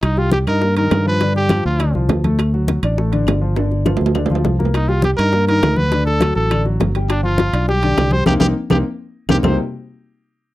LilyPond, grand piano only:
\new Staff \with { instrumentName = "Grand piano" } { \time 4/4 \key c \minor \tempo 4 = 204 r8 <g g'>4 <ees' ees''>8 <bes bes'>8 <ees ees'>4 <f f'>8 | <d d'>4 <f f'>4 <d d'>8 <f f'>4 <a a'>8~ | <a a'>8 <fis fis'>4 <d' d''>8 <a a'>8 <d d'>4 <f f'>8 | <d d'>4 <f f'>4 <d d'>8 <f f'>4 <bes bes'>8~ |
<bes bes'>8 <g g'>4 <ees' ees''>8 <bes bes'>8 <ees ees'>4 <fis fis'>8 | <d d'>4 <fis fis'>4 <d d'>8 <fis fis'>4 <g g'>8~ | <g g'>8 <f f'>4 <d' d''>8 <g g'>8 <d d'>4 <g g'>8 | <bes c' ees'>8 <bes c' ees'>8 r8 <bes c' ees'>8 r4. <bes c' ees'>8 |
<c g bes c' ees' g'>8 r2. r8 | }